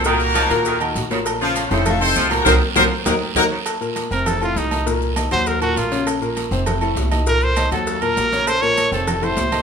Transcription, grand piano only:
\new Staff \with { instrumentName = "Grand piano" } { \time 4/4 \key bes \minor \tempo 4 = 200 <bes, bes bes'>4 <ees ees' ges'>8 <bes, bes bes'>4 <ees ees' ges'>4 <bes, bes bes'>8~ | <bes, bes bes'>8 <des des' f'>4 <a, a a'>4 <c c' ees'>4 <bes, bes bes'>8 | <ges bes c'>8 r8 <ges bes c'>8 r8 <ges bes ees'>8 r8 <ges bes ees'>8 r8 | r8 <bes, bes bes'>4 <c c' c''>4 <a, a a'>4 <ees ees' ees''>8 |
<bes, bes bes'>4 <ees ees' ees''>8 <ges ges' ges''>4 <bes, bes bes'>4 <des des' des''>8~ | <des des' des''>8 <bes, bes bes'>4 <c c' c''>4 <a, a a'>4 <ees ees' ees''>8 | <bes, bes bes'>4 <ees ees' ees''>8 <ges ges' ges''>4 <bes, bes bes'>4 <des des' des''>8~ | <des des' des''>8 <bes, bes bes'>4 <c c' c''>4 <a, a a'>4 <ees ees' ees''>8 | }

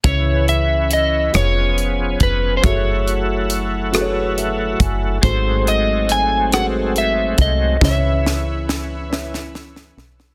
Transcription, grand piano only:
<<
  \new Staff \with { instrumentName = "Grand piano" } { \time 6/8 \key cis \minor \tempo 4. = 46 <cis' e' b' cis''>4 r8 <eis' gis' b' cis''>4 r8 | <fis' gis' a' e''>4 r8 <fis' gis' a' b' cis''>4 r8 | <fis' gis' a' bis'>4 r8 <fis' gis' a' b' bis'>4 r8 | <cis' e' b' bis' cis''>4 r8 <cis' e' b' e''>4 r8 | }
  \new Staff \with { instrumentName = "Grand piano" } { \clef bass \time 6/8 \key cis \minor cis4. r4. | r2 e''8 gis''8 | gis,4. r4. | cis4. r4. | }
>>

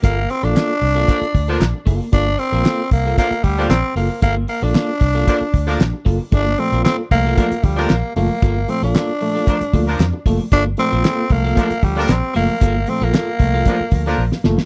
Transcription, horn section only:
\new Staff \with { instrumentName = "Horn section" } { \time 4/4 \key g \minor \tempo 4 = 114 r2 <f d' bes'>16 r8 <f d' bes'>8 r8. | r2 <f d' bes'>16 r8 <f d' bes'>8 r8. | r2 <f d' bes'>16 r8 <f d' bes'>8 r8. | r2 <f d' bes'>16 r8 <f d' bes'>8 r8. |
r2 <f d' bes'>16 r8 <f d' bes'>8 r8. | r2 <f d' bes'>16 r8 <f d' bes'>8 r8. | r2 <f d' bes'>16 r8 <f d' bes'>8 r8. | }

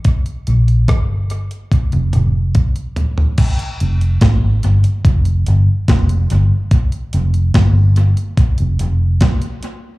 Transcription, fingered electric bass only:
\new Staff \with { instrumentName = "Fingered electric bass" } { \clef bass \time 4/4 \key g \minor \tempo 4 = 72 r8 bes,,8 g,,8. r8 f,,16 f,,8 r4 | \key f \dorian r8 f,,8 aes,,16 aes,,16 g,,16 r16 f,,8 g,,16 r16 f,,8 g,,16 r16 | r8 f,,8 g,,8. r8 f,,16 f,,8 r4 | }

